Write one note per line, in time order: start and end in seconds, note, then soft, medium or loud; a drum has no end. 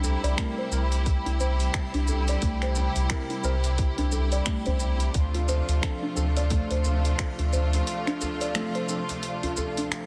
0.00 0.16 C2 medium
0.00 10.06 C3 medium
0.00 0.33 G3 loud
0.00 5.10 G3 medium
0.00 0.34 C4 medium
0.00 5.10 E4 medium
0.00 5.11 G4 medium
0.00 0.23 A4 medium
0.00 0.34 E5 medium
0.00 0.35 A#5 loud
0.00 shaker medium
0.04 djembe slap medium
0.04 djembe tone medium
0.24 0.34 C2 medium
0.24 0.37 D5 loud
0.24 open hi-hat soft
0.24 shaker soft
0.36 0.68 G3 medium
0.36 0.56 A3 loud
0.36 0.68 C4 medium
0.36 0.68 E4 medium
0.36 0.69 A#4 medium
0.36 finger snap loud
0.36 kick loud
0.36 open hi-hat medium
0.36 shaker soft
0.58 0.71 C5 medium
0.71 1.18 C2 medium
0.71 0.81 G3 medium
0.71 0.81 C4 medium
0.71 0.82 E4 medium
0.71 0.82 A#4 medium
0.71 shaker medium
0.92 open hi-hat soft
0.92 djembe slap soft
0.92 shaker soft
1.06 kick loud
1.06 open hi-hat medium
1.06 shaker soft
1.26 1.69 C2 loud
1.26 1.39 E4 loud
1.26 open hi-hat soft
1.39 1.59 C5 medium
1.39 djembe tone medium
1.39 shaker medium
1.60 open hi-hat soft
1.60 shaker soft
1.74 finger snap loud
1.74 kick loud
1.74 open hi-hat medium
1.74 shaker soft
1.94 2.37 C2 medium
1.94 2.07 D4 medium
1.94 open hi-hat soft
2.08 2.27 A4 medium
2.08 djembe tone medium
2.08 shaker medium
2.28 2.42 D5 medium
2.28 open hi-hat soft
2.28 djembe slap medium
2.28 shaker soft
2.42 2.89 C2 loud
2.42 2.60 A3 loud
2.42 kick loud
2.42 open hi-hat medium
2.42 shaker soft
2.62 2.76 C5 medium
2.62 finger snap soft
2.62 open hi-hat soft
2.75 djembe slap medium
2.75 djembe tone medium
2.75 shaker medium
2.96 3.07 C2 medium
2.96 open hi-hat soft
2.96 shaker soft
3.09 3.40 G3 medium
3.09 3.41 C4 medium
3.09 3.41 E4 medium
3.09 3.41 A#4 medium
3.09 finger snap loud
3.09 kick loud
3.09 open hi-hat medium
3.09 shaker soft
3.30 3.44 E4 loud
3.30 open hi-hat soft
3.43 3.90 C2 medium
3.43 3.53 G3 medium
3.43 3.54 C4 medium
3.43 3.54 E4 medium
3.43 3.54 A#4 medium
3.43 3.63 C5 medium
3.43 shaker medium
3.64 open hi-hat soft
3.64 djembe slap soft
3.64 shaker soft
3.78 kick loud
3.78 open hi-hat medium
3.78 shaker soft
3.98 4.41 C2 medium
3.98 4.11 D4 loud
3.98 open hi-hat soft
3.98 djembe tone medium
4.12 4.31 A4 medium
4.12 djembe tone medium
4.12 shaker medium
4.32 4.46 D5 loud
4.32 open hi-hat soft
4.32 shaker soft
4.46 4.65 A3 loud
4.46 finger snap loud
4.46 kick loud
4.46 open hi-hat medium
4.46 shaker soft
4.66 5.09 C2 medium
4.66 4.80 C5 medium
4.66 open hi-hat soft
4.66 djembe bass medium
4.80 shaker medium
5.00 open hi-hat soft
5.00 shaker soft
5.14 5.61 D2 loud
5.14 10.06 F3 medium
5.14 10.06 A3 medium
5.14 10.06 D4 medium
5.14 10.06 F4 medium
5.14 kick loud
5.14 open hi-hat medium
5.14 shaker soft
5.34 5.48 F4 loud
5.34 open hi-hat soft
5.48 5.68 C5 medium
5.48 djembe slap medium
5.48 djembe tone medium
5.48 shaker medium
5.68 5.79 D2 medium
5.68 open hi-hat soft
5.68 shaker soft
5.81 6.13 F3 medium
5.81 6.13 C4 medium
5.81 6.14 D4 medium
5.81 6.14 A4 medium
5.81 finger snap medium
5.81 kick loud
5.81 open hi-hat medium
5.81 shaker soft
6.03 6.15 D4 loud
6.15 6.63 D2 medium
6.15 6.26 F3 medium
6.15 6.26 C4 medium
6.15 6.26 D4 medium
6.15 6.27 A4 medium
6.15 6.36 A4 medium
6.15 shaker medium
6.36 6.50 D5 loud
6.36 open hi-hat soft
6.36 djembe slap medium
6.36 shaker soft
6.50 6.69 A3 loud
6.50 kick loud
6.50 open hi-hat medium
6.50 shaker soft
6.71 7.14 D2 medium
6.71 6.84 C5 medium
6.71 open hi-hat soft
6.84 djembe tone medium
6.84 shaker medium
7.05 open hi-hat soft
7.05 shaker soft
7.19 finger snap loud
7.19 kick loud
7.19 open hi-hat medium
7.19 shaker soft
7.39 7.82 D2 medium
7.39 7.53 F4 medium
7.39 open hi-hat soft
7.53 7.72 C5 medium
7.53 djembe tone medium
7.53 shaker medium
7.73 open hi-hat soft
7.73 djembe slap medium
7.73 shaker soft
7.87 open hi-hat medium
7.87 shaker soft
8.07 8.20 D4 loud
8.07 finger snap soft
8.07 open hi-hat soft
8.21 8.41 A4 medium
8.21 djembe slap medium
8.21 djembe tone medium
8.21 shaker medium
8.41 8.55 D5 loud
8.41 open hi-hat soft
8.41 shaker soft
8.54 8.86 F3 medium
8.54 8.73 A3 medium
8.54 8.86 C4 medium
8.54 8.86 D4 medium
8.54 8.87 A4 medium
8.54 finger snap loud
8.54 open hi-hat medium
8.54 shaker soft
8.75 8.89 C5 medium
8.75 open hi-hat soft
8.88 8.99 F3 medium
8.88 8.99 C4 medium
8.88 8.99 D4 medium
8.88 9.00 A4 medium
8.88 shaker medium
9.09 open hi-hat soft
9.09 djembe slap soft
9.09 shaker soft
9.23 open hi-hat medium
9.23 shaker soft
9.43 9.57 F4 loud
9.43 open hi-hat soft
9.43 djembe tone medium
9.57 9.69 A4 medium
9.57 djembe slap soft
9.57 djembe tone medium
9.57 shaker medium
9.77 9.91 D4 medium
9.77 open hi-hat soft
9.77 shaker soft
9.92 finger snap loud
9.92 open hi-hat medium
9.92 shaker soft